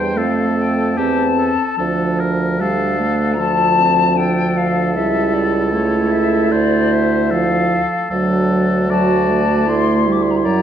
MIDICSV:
0, 0, Header, 1, 6, 480
1, 0, Start_track
1, 0, Tempo, 807537
1, 1060, Time_signature, 4, 2, 24, 8
1, 2016, Tempo, 783290
1, 6447, End_track
2, 0, Start_track
2, 0, Title_t, "Flute"
2, 0, Program_c, 0, 73
2, 0, Note_on_c, 0, 79, 59
2, 104, Note_on_c, 0, 77, 55
2, 113, Note_off_c, 0, 79, 0
2, 340, Note_off_c, 0, 77, 0
2, 350, Note_on_c, 0, 79, 50
2, 580, Note_on_c, 0, 81, 56
2, 589, Note_off_c, 0, 79, 0
2, 1062, Note_off_c, 0, 81, 0
2, 1542, Note_on_c, 0, 77, 60
2, 1980, Note_on_c, 0, 82, 44
2, 1989, Note_off_c, 0, 77, 0
2, 2018, Note_on_c, 0, 81, 65
2, 2027, Note_off_c, 0, 82, 0
2, 2489, Note_on_c, 0, 79, 69
2, 2498, Note_off_c, 0, 81, 0
2, 2736, Note_on_c, 0, 77, 64
2, 2745, Note_off_c, 0, 79, 0
2, 2964, Note_off_c, 0, 77, 0
2, 2968, Note_on_c, 0, 76, 67
2, 3205, Note_on_c, 0, 74, 59
2, 3215, Note_off_c, 0, 76, 0
2, 3439, Note_off_c, 0, 74, 0
2, 3443, Note_on_c, 0, 73, 61
2, 3680, Note_on_c, 0, 76, 64
2, 3689, Note_off_c, 0, 73, 0
2, 3925, Note_on_c, 0, 74, 68
2, 3934, Note_off_c, 0, 76, 0
2, 4178, Note_on_c, 0, 76, 60
2, 4187, Note_off_c, 0, 74, 0
2, 4428, Note_on_c, 0, 77, 67
2, 4438, Note_off_c, 0, 76, 0
2, 4911, Note_off_c, 0, 77, 0
2, 5398, Note_on_c, 0, 81, 72
2, 5871, Note_on_c, 0, 84, 80
2, 5880, Note_off_c, 0, 81, 0
2, 6138, Note_on_c, 0, 86, 53
2, 6147, Note_off_c, 0, 84, 0
2, 6200, Note_on_c, 0, 84, 57
2, 6209, Note_off_c, 0, 86, 0
2, 6251, Note_on_c, 0, 82, 61
2, 6260, Note_off_c, 0, 84, 0
2, 6290, Note_on_c, 0, 84, 59
2, 6299, Note_off_c, 0, 82, 0
2, 6340, Note_on_c, 0, 82, 75
2, 6349, Note_off_c, 0, 84, 0
2, 6447, Note_off_c, 0, 82, 0
2, 6447, End_track
3, 0, Start_track
3, 0, Title_t, "Oboe"
3, 0, Program_c, 1, 68
3, 0, Note_on_c, 1, 72, 38
3, 101, Note_on_c, 1, 69, 42
3, 110, Note_off_c, 1, 72, 0
3, 578, Note_on_c, 1, 67, 43
3, 587, Note_off_c, 1, 69, 0
3, 749, Note_off_c, 1, 67, 0
3, 820, Note_on_c, 1, 69, 47
3, 1055, Note_off_c, 1, 69, 0
3, 1058, Note_on_c, 1, 69, 47
3, 1306, Note_on_c, 1, 70, 50
3, 1315, Note_off_c, 1, 69, 0
3, 1547, Note_on_c, 1, 69, 43
3, 1556, Note_off_c, 1, 70, 0
3, 2341, Note_off_c, 1, 69, 0
3, 2492, Note_on_c, 1, 69, 46
3, 3931, Note_on_c, 1, 72, 48
3, 3940, Note_off_c, 1, 69, 0
3, 4413, Note_on_c, 1, 69, 49
3, 4422, Note_off_c, 1, 72, 0
3, 4898, Note_off_c, 1, 69, 0
3, 4902, Note_on_c, 1, 69, 49
3, 5392, Note_on_c, 1, 74, 49
3, 5401, Note_off_c, 1, 69, 0
3, 6184, Note_off_c, 1, 74, 0
3, 6336, Note_on_c, 1, 74, 53
3, 6447, Note_off_c, 1, 74, 0
3, 6447, End_track
4, 0, Start_track
4, 0, Title_t, "Clarinet"
4, 0, Program_c, 2, 71
4, 0, Note_on_c, 2, 62, 40
4, 99, Note_on_c, 2, 60, 43
4, 108, Note_off_c, 2, 62, 0
4, 571, Note_off_c, 2, 60, 0
4, 575, Note_on_c, 2, 60, 38
4, 892, Note_off_c, 2, 60, 0
4, 1057, Note_on_c, 2, 62, 43
4, 1521, Note_off_c, 2, 62, 0
4, 1541, Note_on_c, 2, 62, 44
4, 2002, Note_on_c, 2, 65, 42
4, 2011, Note_off_c, 2, 62, 0
4, 2251, Note_on_c, 2, 60, 44
4, 2260, Note_off_c, 2, 65, 0
4, 2485, Note_on_c, 2, 62, 40
4, 2494, Note_off_c, 2, 60, 0
4, 2966, Note_on_c, 2, 64, 42
4, 2976, Note_off_c, 2, 62, 0
4, 3434, Note_off_c, 2, 64, 0
4, 3438, Note_on_c, 2, 64, 46
4, 4714, Note_off_c, 2, 64, 0
4, 4905, Note_on_c, 2, 62, 43
4, 5365, Note_off_c, 2, 62, 0
4, 5392, Note_on_c, 2, 66, 52
4, 5852, Note_off_c, 2, 66, 0
4, 5856, Note_on_c, 2, 64, 55
4, 6447, Note_off_c, 2, 64, 0
4, 6447, End_track
5, 0, Start_track
5, 0, Title_t, "French horn"
5, 0, Program_c, 3, 60
5, 0, Note_on_c, 3, 55, 44
5, 88, Note_on_c, 3, 57, 45
5, 97, Note_off_c, 3, 55, 0
5, 580, Note_on_c, 3, 60, 40
5, 589, Note_off_c, 3, 57, 0
5, 901, Note_off_c, 3, 60, 0
5, 1058, Note_on_c, 3, 53, 47
5, 1544, Note_on_c, 3, 55, 46
5, 1553, Note_off_c, 3, 53, 0
5, 1774, Note_off_c, 3, 55, 0
5, 1778, Note_on_c, 3, 57, 47
5, 2004, Note_off_c, 3, 57, 0
5, 2008, Note_on_c, 3, 53, 49
5, 2949, Note_off_c, 3, 53, 0
5, 2980, Note_on_c, 3, 55, 44
5, 3453, Note_on_c, 3, 57, 53
5, 3462, Note_off_c, 3, 55, 0
5, 4421, Note_on_c, 3, 53, 48
5, 4430, Note_off_c, 3, 57, 0
5, 4745, Note_off_c, 3, 53, 0
5, 4903, Note_on_c, 3, 54, 58
5, 5364, Note_off_c, 3, 54, 0
5, 5394, Note_on_c, 3, 54, 55
5, 5633, Note_on_c, 3, 57, 54
5, 5642, Note_off_c, 3, 54, 0
5, 5869, Note_off_c, 3, 57, 0
5, 5872, Note_on_c, 3, 57, 61
5, 6110, Note_on_c, 3, 55, 57
5, 6119, Note_off_c, 3, 57, 0
5, 6340, Note_on_c, 3, 54, 57
5, 6349, Note_off_c, 3, 55, 0
5, 6447, Note_off_c, 3, 54, 0
5, 6447, End_track
6, 0, Start_track
6, 0, Title_t, "Bassoon"
6, 0, Program_c, 4, 70
6, 0, Note_on_c, 4, 40, 45
6, 99, Note_on_c, 4, 41, 44
6, 108, Note_off_c, 4, 40, 0
6, 577, Note_off_c, 4, 41, 0
6, 582, Note_on_c, 4, 40, 43
6, 896, Note_off_c, 4, 40, 0
6, 1067, Note_on_c, 4, 38, 45
6, 2976, Note_on_c, 4, 37, 47
6, 2985, Note_off_c, 4, 38, 0
6, 3929, Note_on_c, 4, 38, 53
6, 3939, Note_off_c, 4, 37, 0
6, 4745, Note_off_c, 4, 38, 0
6, 4908, Note_on_c, 4, 38, 57
6, 6316, Note_off_c, 4, 38, 0
6, 6340, Note_on_c, 4, 42, 53
6, 6447, Note_off_c, 4, 42, 0
6, 6447, End_track
0, 0, End_of_file